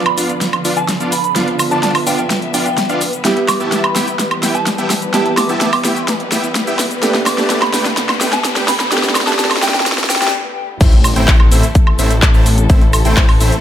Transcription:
Already playing: D3 F3 B3 D4 F4 B4
0.06 B5, closed hi-hat, high woodblock
0.18 B3 D4 F4 D5 F5, open hi-hat, shaker
0.29 closed hi-hat, shaker
0.41 snare, closed hi-hat, shaker
0.53 closed hi-hat, high woodblock
0.65 B3 D4 F4 D5 F5, open hi-hat, shaker
0.77 A5, closed hi-hat, shaker
0.89 snare, closed hi-hat, shaker
1.00 B3 D4 F4 D5 F5, closed hi-hat, shaker
1.12 B5, open hi-hat, shaker
1.24 B5, closed hi-hat, shaker
1.35 F3 B3 D4 F4 D5 E5 F5, snare, closed hi-hat, shaker
1.48 closed hi-hat
1.59 open hi-hat, high woodblock, shaker
1.70 F3 B3 D4 F4 D5 A5, closed hi-hat, shaker
1.83 A5, snare, closed hi-hat, shaker
1.95 open hi-hat, high woodblock
2.07 B3 D4 F4 D5 F5 G5, open hi-hat, shaker
2.18 G5, closed hi-hat, shaker
2.30 snare, closed hi-hat, shaker
2.42 closed hi-hat
2.54 B3 D4 F4 D5 F5 G5, open hi-hat, shaker
2.66 G5, closed hi-hat, shaker
2.78 snare, closed hi-hat, shaker
2.89 B3 D4 F4 D5 F5, closed hi-hat, shaker
3.01 open hi-hat, shaker
3.13 closed hi-hat, shaker
3.24 E3 G3 B3 E4 G4 E5 G5, snare, closed hi-hat, riser, shaker
3.37 closed hi-hat
3.48 D6, snare, open hi-hat, high woodblock, shaker
3.59 G3 B3 E4 G4 E5 A5, closed hi-hat, shaker
3.72 snare, closed hi-hat, shaker
3.84 B5, closed hi-hat, high woodblock
3.96 B3 E4 G4 E5 G5, snare, open hi-hat, shaker
4.08 closed hi-hat, shaker
4.19 snare, closed hi-hat, shaker
4.31 closed hi-hat, high woodblock
4.43 B3 E4 G4 E5 G5, snare, open hi-hat, shaker
4.55 A5, closed hi-hat, shaker
4.67 snare, closed hi-hat, shaker
4.78 B3 E4 G4 E5 G5, closed hi-hat, shaker
4.90 snare, open hi-hat, shaker
5.02 closed hi-hat, shaker
5.13 G3 B3 E4 G4 E5 G5 A5, snare, closed hi-hat, shaker
5.25 A5, closed hi-hat
5.37 D6, snare, open hi-hat, high woodblock, shaker
5.48 G3 B3 E4 G4 E5 A5, closed hi-hat, shaker
5.61 snare, closed hi-hat, shaker
5.73 D6, open hi-hat, high woodblock
5.84 B3 E4 G4 E5 G5, snare, open hi-hat, shaker
5.96 closed hi-hat, shaker
6.08 snare, closed hi-hat, shaker
6.20 closed hi-hat
6.32 B3 E4 G4 E5 G5, snare, open hi-hat, shaker
6.44 closed hi-hat, shaker
6.55 snare, closed hi-hat, shaker
6.67 B3 E4 G4 E5 G5, closed hi-hat, shaker
6.79 snare, open hi-hat, shaker
6.91 closed hi-hat, shaker
7.02 D3 A3 B3 D4 G4 B4 G5, snare, closed hi-hat, shaker
7.15 snare, closed hi-hat
7.26 D6, snare, open hi-hat, high woodblock, shaker
7.37 A3 B3 D4 G4 B4 A5, snare, closed hi-hat, shaker
7.50 snare, closed hi-hat, shaker
7.62 B5, snare, closed hi-hat, high woodblock
7.74 A3 D4 G4 B4 G5, snare, open hi-hat, shaker
7.85 snare, closed hi-hat, shaker
7.97 snare, closed hi-hat, shaker
8.09 snare, closed hi-hat, high woodblock
8.21 A3 D4 G4 B4 G5, snare, open hi-hat, shaker
8.33 A5, snare, closed hi-hat, shaker
8.45 snare, closed hi-hat, shaker
8.56 A3 D4 G4 B4 G5, snare, closed hi-hat, shaker
8.68 B5, snare, open hi-hat, shaker
8.80 B5, snare, closed hi-hat, shaker
8.91 A3 B3 D4 G4 B4 G5, snare, closed hi-hat, shaker
8.98 snare
9.03 snare, closed hi-hat, shaker
9.09 snare
9.15 snare, open hi-hat, high woodblock, shaker
9.21 snare
9.26 A3 B3 D4 G4 B4 A5, snare, closed hi-hat, shaker
9.33 snare
9.39 A5, snare, closed hi-hat, shaker
9.45 snare
9.51 snare, open hi-hat, high woodblock
9.57 snare
9.62 A3 D4 G4 B4 G5, snare, open hi-hat, shaker
9.68 snare
9.74 G5, snare, closed hi-hat, shaker
9.80 snare
9.86 snare, closed hi-hat, shaker
9.92 snare
9.98 snare, closed hi-hat, shaker
10.04 snare
10.10 G5, snare, open hi-hat, shaker
10.16 snare
10.22 A3 D4 G4 B4 G5 A5, snare, closed hi-hat, shaker
10.28 snare
10.81 A1 C3 E3 A3 C4 E4 A4 C5 E5, kick, closed hi-hat, crash, impact, shaker
10.93 closed hi-hat
11.04 open hi-hat, high woodblock, shaker
11.16 A1 A3 C4 E4 C5 G5, closed hi-hat, shaker
11.28 kick, clap, closed hi-hat, shaker
11.40 high woodblock
11.51 A1 A3 C4 E4 C5 E5, open hi-hat, shaker
11.63 closed hi-hat, shaker
11.75 kick, closed hi-hat, shaker
11.87 high woodblock
11.99 A1 A3 C4 E4 C5 E5, open hi-hat, shaker
12.11 closed hi-hat, shaker
12.22 kick, clap, closed hi-hat, shaker
12.34 A1 A3 C4 E4 C5 A5, shaker
12.46 open hi-hat, shaker
12.58 closed hi-hat, shaker
12.70 A1 A3 C4 E4 C5 E5, kick, closed hi-hat, shaker
12.81 closed hi-hat
12.93 open hi-hat, high woodblock, shaker
13.05 A1 A3 C4 E4 C5 G5, closed hi-hat, shaker
13.17 kick, clap, closed hi-hat, shaker
13.29 open hi-hat, high woodblock
13.41 A1 A3 C4 E4 C5 E5, open hi-hat, shaker
13.52 closed hi-hat, shaker

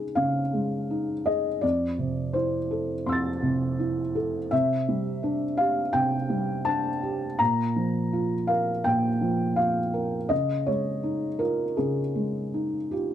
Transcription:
Already playing: C#3 G#3 D#4 G#4
0.15 C#3 F5
0.53 G#3
0.90 D#4
1.26 G#4 D#5
1.61 F2 D5
1.98 C3
2.33 E4 C5
2.71 A4
3.06 F2 C6 E6
3.12 A6
3.42 C3
3.79 E4
4.15 A4
4.51 C3 E5
4.88 G3
5.23 D4
5.57 G4 F5
5.93 C3 G5
6.30 G3
6.65 D4 A5
7.03 G4
7.39 A#2 A#5
7.76 F3
8.13 F4
8.47 A#4 F5
8.84 A#2 G5
9.21 F3
9.56 F4 F5
9.94 A#4
10.29 C#3 D#5
10.66 G#3 C#5
11.03 D#4
11.39 F4 A#4
11.77 C#3 G#4
12.15 G#3
12.54 D#4
12.91 F4 G4

